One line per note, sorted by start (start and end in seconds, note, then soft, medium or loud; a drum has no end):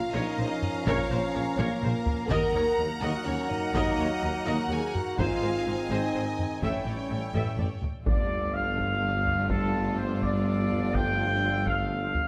0.00 0.10 A#2 medium
0.00 2.27 F3 medium
0.00 2.26 A#3 medium
0.00 2.27 C#4 medium
0.00 2.31 C#4 medium
0.00 0.14 F4 medium
0.00 2.27 A#4 medium
0.00 0.13 F5 medium
0.00 2.30 F5 medium
0.00 2.31 F5 medium
0.00 2.26 A#5 medium
0.14 0.22 A#1 medium
0.14 0.25 A#1 medium
0.14 0.22 A#2 medium
0.14 0.87 D#4 medium
0.14 0.37 A#4 medium
0.14 0.36 C#5 medium
0.14 0.86 D#5 medium
0.38 0.47 A#1 medium
0.38 0.48 A#1 medium
0.38 0.46 A#2 medium
0.38 0.46 A#4 medium
0.38 0.46 C5 medium
0.62 taiko low-mid soft
0.86 0.94 A#1 medium
0.86 0.97 A#1 medium
0.86 0.94 A#2 medium
0.86 1.58 C#4 medium
0.86 1.09 A#4 medium
0.86 1.57 C#5 medium
0.86 1.09 C#5 medium
0.86 taiko medium
1.10 1.18 A#1 medium
1.10 1.20 A#1 medium
1.10 1.19 A#2 medium
1.10 1.19 A#4 medium
1.10 1.19 C5 medium
1.34 1.42 A#1 medium
1.34 1.45 A#1 soft
1.34 1.42 A#2 medium
1.34 1.43 A#4 medium
1.34 1.43 C#5 medium
1.57 1.66 A#1 medium
1.57 1.68 A#1 medium
1.57 1.65 A#2 medium
1.57 2.30 A#3 loud
1.57 2.31 A#4 medium
1.57 1.81 A#4 medium
1.57 1.81 C#5 medium
1.57 taiko high medium
1.82 1.92 A#1 medium
1.82 1.91 A#1 medium
1.82 1.90 A#2 medium
1.82 1.91 A#4 medium
1.82 1.91 C5 medium
1.82 taiko mid medium
2.06 taiko low medium
2.29 2.38 D#2 medium
2.29 2.39 D#2 medium
2.29 2.40 D#2 medium
2.29 5.02 F#3 medium
2.29 5.02 A#3 medium
2.29 5.15 A#3 medium
2.29 6.63 D#4 medium
2.29 2.84 A#4 loud
2.29 2.53 A#4 medium
2.29 5.15 A#4 medium
2.29 2.53 D#5 medium
2.29 5.14 F#5 medium
2.29 5.19 F#5 medium
2.29 5.14 A#5 medium
2.29 3.02 A#5 medium
2.29 taiko medium
2.53 2.61 D#2 medium
2.53 2.64 D#2 medium
2.53 2.63 D#2 medium
2.53 2.64 A#4 medium
2.53 2.63 C#5 medium
2.78 2.86 D#2 medium
2.78 2.87 D#2 medium
2.78 2.88 D#2 medium
2.78 2.87 A#4 soft
2.78 2.87 D#5 medium
3.01 3.10 D#2 medium
3.01 3.12 D#2 medium
3.01 3.25 F#4 medium
3.01 3.25 A#4 medium
3.01 3.25 D#5 medium
3.01 3.27 F#5 medium
3.25 3.34 D#2 medium
3.25 3.35 D#2 medium
3.25 3.36 D#2 medium
3.25 3.50 C#4 medium
3.25 3.35 A#4 medium
3.25 3.50 C#5 medium
3.25 3.35 C#5 medium
3.50 3.73 D#4 medium
3.50 3.75 D#5 medium
3.50 taiko low-mid soft
3.74 3.82 D#2 medium
3.74 3.84 D#2 medium
3.74 4.45 D#4 loud
3.74 3.97 A#4 medium
3.74 3.97 D#5 medium
3.74 4.46 D#5 medium
3.74 taiko medium
3.98 4.06 D#2 medium
3.98 4.08 D#2 medium
3.98 4.07 A#4 medium
3.98 4.07 C#5 medium
4.22 4.30 D#2 medium
4.22 4.31 D#2 medium
4.22 4.32 D#2 soft
4.22 4.31 A#4 soft
4.22 4.30 D#5 soft
4.46 4.54 D#2 medium
4.46 4.55 D#2 medium
4.46 4.57 D#2 medium
4.46 4.71 F#4 medium
4.46 4.69 A#4 medium
4.46 4.69 D#5 medium
4.46 4.71 F#5 medium
4.71 4.79 D#2 medium
4.71 4.81 D#2 soft
4.71 4.79 D#2 medium
4.71 4.95 G#4 medium
4.71 4.79 A#4 medium
4.71 4.79 C#5 medium
4.71 4.95 G#5 medium
4.95 5.19 F#4 medium
4.95 5.19 F#5 medium
4.95 taiko low-mid soft
5.18 5.26 G#1 medium
5.18 5.28 G#1 medium
5.18 5.27 G#2 medium
5.18 6.59 D#3 medium
5.18 6.59 C4 medium
5.18 6.63 C4 medium
5.18 5.90 F4 loud
5.18 6.63 G#4 medium
5.18 5.41 C5 medium
5.18 6.63 D#5 medium
5.18 5.90 F5 medium
5.18 6.60 G#5 medium
5.18 6.63 G#5 medium
5.18 taiko medium
5.42 5.52 G#1 soft
5.42 5.51 G#1 medium
5.42 5.50 G#2 medium
5.42 5.51 A#4 medium
5.42 5.51 C5 soft
5.66 5.75 G#1 soft
5.66 5.76 G#1 soft
5.66 5.74 G#2 soft
5.66 5.75 C5 soft
5.90 5.98 G#1 medium
5.90 6.00 G#1 medium
5.90 5.98 G#2 medium
5.90 6.63 D#4 medium
5.90 6.13 C5 medium
5.90 6.63 D#5 medium
6.14 6.22 G#1 soft
6.14 6.25 G#1 soft
6.14 6.23 G#2 soft
6.14 6.23 A#4 soft
6.14 6.23 C5 soft
6.39 taiko low-mid soft
6.62 6.70 A1 medium
6.62 6.72 A1 medium
6.62 6.70 A2 medium
6.62 7.78 E3 medium
6.62 7.78 G3 medium
6.62 7.83 A3 medium
6.62 7.81 C#4 medium
6.62 7.83 E4 medium
6.62 6.85 A4 medium
6.62 7.83 A4 medium
6.62 7.80 C#5 medium
6.62 6.85 E5 medium
6.62 7.86 G5 soft
6.62 7.83 G5 medium
6.62 taiko medium
6.86 6.94 A1 soft
6.86 6.96 A1 soft
6.86 6.94 A2 soft
6.86 6.94 A4 soft
6.86 6.94 D5 soft
7.09 7.18 A1 soft
7.09 7.21 A1 soft
7.09 7.17 A2 soft
7.09 7.19 A4 soft
7.09 7.19 E5 soft
7.33 7.42 A1 medium
7.33 7.44 A1 medium
7.33 7.42 A2 medium
7.33 7.57 A4 medium
7.33 7.57 E5 medium
7.33 taiko low-mid medium
7.57 7.65 A1 soft
7.57 7.68 A1 soft
7.57 7.65 A2 soft
7.57 7.66 A4 soft
7.57 7.66 D5 soft
7.57 taiko low-mid medium
7.83 taiko low medium
8.05 12.28 G1 medium
8.05 12.28 G2 medium
8.05 12.28 D3 medium
8.05 12.28 F3 medium
8.05 12.28 A3 medium
8.05 12.28 D4 medium
8.05 12.28 F4 medium
8.05 12.28 A4 medium
8.05 8.51 D5 medium
8.05 12.28 F5 medium
8.05 taiko loud
8.05 sub drop medium
8.54 9.50 F5 medium
8.78 taiko medium
9.26 taiko low soft
9.50 9.97 A4 medium
9.50 taiko medium
9.97 10.21 C5 medium
10.22 10.94 D5 medium
10.22 taiko medium
10.70 taiko low soft
10.94 11.66 G5 loud
10.94 taiko medium
11.67 12.28 F5 medium
11.67 taiko medium
12.14 taiko low soft